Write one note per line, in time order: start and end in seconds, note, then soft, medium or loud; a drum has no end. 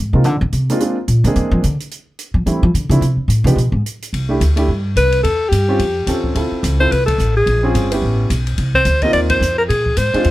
0.00 0.13 G#2 medium
0.13 0.25 C3 medium
0.13 0.24 G#3 medium
0.13 0.24 A#3 medium
0.13 0.24 C4 medium
0.13 0.25 D#4 medium
0.13 0.25 F4 medium
0.24 0.40 D3 medium
0.24 closed hi-hat soft
0.41 0.52 D#3 loud
0.53 0.69 C3 medium
0.53 closed hi-hat soft
0.69 0.78 G#3 medium
0.69 0.79 A#3 medium
0.69 0.79 C4 medium
0.69 0.79 D4 medium
0.69 0.80 F4 medium
0.69 closed hi-hat soft
0.79 0.95 G#3 medium
0.79 0.95 A#3 medium
0.79 0.95 C4 medium
0.79 0.95 D4 medium
0.79 0.96 F4 medium
0.79 closed hi-hat soft
1.08 1.23 A#2 medium
1.08 closed hi-hat soft
1.24 1.35 D3 medium
1.24 1.62 G#3 medium
1.24 1.62 A#3 medium
1.24 1.62 C4 medium
1.24 1.62 D4 medium
1.24 1.63 G#4 medium
1.24 closed hi-hat soft
1.36 1.51 E3 medium
1.36 closed hi-hat soft
1.51 1.63 F3 loud
1.64 1.74 D3 medium
1.64 closed hi-hat soft
1.80 closed hi-hat soft
1.91 closed hi-hat soft
2.19 closed hi-hat soft
2.34 2.46 F3 medium
2.46 2.62 E3 medium
2.46 2.61 G3 medium
2.46 2.61 A3 medium
2.46 2.61 C4 medium
2.46 2.62 D4 soft
2.46 2.62 E4 medium
2.46 closed hi-hat soft
2.63 2.74 F3 loud
2.74 2.89 D3 medium
2.74 closed hi-hat soft
2.89 3.00 C#3 loud
2.89 3.01 F3 medium
2.89 3.01 A3 medium
2.89 3.01 C4 medium
2.89 3.01 D4 medium
2.89 3.01 E4 medium
2.89 closed hi-hat soft
3.01 3.16 C3 medium
3.01 closed hi-hat soft
3.17 3.27 E2 soft
3.28 3.44 A2 medium
3.28 closed hi-hat soft
3.44 3.55 C3 loud
3.44 3.56 F3 medium
3.44 3.56 G#3 medium
3.44 3.57 B3 medium
3.44 3.56 D4 medium
3.44 3.57 G4 medium
3.44 closed hi-hat soft
3.56 3.71 B2 medium
3.56 closed hi-hat soft
3.72 3.79 G#2 medium
3.86 closed hi-hat soft
4.02 closed hi-hat medium
4.13 4.40 C2 medium
4.13 kick soft
4.13 ride medium
4.29 4.39 A3 medium
4.29 4.40 D4 medium
4.29 4.40 E4 medium
4.29 4.40 G4 medium
4.40 4.67 D2 medium
4.40 kick soft
4.40 hi-hat pedal medium
4.40 ride medium
4.56 4.67 A3 medium
4.56 4.67 D4 medium
4.56 4.68 E4 medium
4.56 4.68 G4 medium
4.56 ride medium
4.68 4.95 G2 medium
4.68 kick soft
4.96 5.23 C2 medium
4.96 5.22 B4 loud
4.96 kick soft
4.96 hi-hat pedal medium
4.96 ride medium
5.12 ride soft
5.23 5.51 E2 medium
5.23 5.50 A4 medium
5.23 kick soft
5.23 ride medium
5.49 5.79 G2 medium
5.49 6.22 G4 medium
5.49 kick soft
5.49 hi-hat pedal medium
5.49 ride medium
5.68 5.79 C4 medium
5.68 5.79 C#4 medium
5.68 5.79 F4 medium
5.68 5.79 G4 medium
5.79 6.06 F2 medium
5.79 kick soft
5.79 ride medium
6.07 6.34 D#2 medium
6.07 6.33 C4 medium
6.07 6.35 C#4 medium
6.07 6.34 F4 medium
6.07 6.35 A4 medium
6.07 kick soft
6.07 hi-hat pedal soft
6.07 ride medium
6.24 kick medium
6.35 6.50 D2 medium
6.35 6.76 C4 medium
6.35 6.76 E4 medium
6.35 6.77 F4 medium
6.35 6.77 A4 medium
6.35 ride medium
6.51 muted upright bass stroke soft
6.63 6.90 C#2 medium
6.63 kick soft
6.63 hi-hat pedal medium
6.63 ride medium
6.79 6.90 C4 medium
6.79 6.90 E4 medium
6.79 6.90 F4 medium
6.79 6.91 A4 medium
6.79 6.94 C5 medium
6.91 7.18 C2 medium
6.91 7.05 B4 loud
6.91 kick soft
6.91 ride medium
7.06 7.32 A4 medium
7.06 kick medium
7.06 ride medium
7.18 7.46 A1 medium
7.18 hi-hat pedal medium
7.37 7.73 G#4 medium
7.46 7.73 A#1 medium
7.46 kick soft
7.46 ride medium
7.63 7.89 C4 medium
7.63 7.90 C#4 medium
7.63 7.90 F4 medium
7.63 7.90 G#4 medium
7.75 8.02 G1 medium
7.75 kick soft
7.75 hi-hat pedal soft
7.75 ride medium
7.91 8.28 B3 medium
7.91 8.28 C#4 medium
7.91 8.29 E4 medium
7.91 8.29 G4 medium
7.91 ride medium
8.02 8.29 A1 medium
8.02 kick soft
8.30 8.57 B1 medium
8.30 hi-hat pedal medium
8.30 ride medium
8.47 ride soft
8.58 8.85 C2 medium
8.58 kick soft
8.58 ride medium
8.74 9.04 C5 medium
8.74 kick medium
8.85 9.13 D2 medium
8.85 hi-hat pedal medium
8.85 ride medium
9.02 9.39 A#3 medium
9.02 9.40 C4 medium
9.02 9.40 D#4 medium
9.02 9.40 F4 medium
9.02 9.13 D#5 medium
9.02 kick soft
9.02 ride soft
9.13 9.40 D#2 medium
9.13 9.21 D5 medium
9.13 kick soft
9.13 ride medium
9.30 9.56 C5 medium
9.30 kick medium
9.30 ride medium
9.41 9.68 F2 medium
9.41 hi-hat pedal medium
9.58 9.63 A#4 medium
9.69 9.97 A#2 medium
9.69 9.99 G#4 medium
9.69 kick soft
9.69 ride medium
9.86 kick medium
9.97 10.13 G#2 medium
9.97 10.31 C5 medium
9.97 hi-hat pedal medium
9.97 ride medium
10.14 10.24 G#3 medium
10.14 10.25 C4 medium
10.14 10.25 D4 medium
10.14 10.25 F4 medium
10.14 muted upright bass stroke soft
10.14 ride soft
10.24 10.31 E2 medium
10.24 kick soft
10.24 ride medium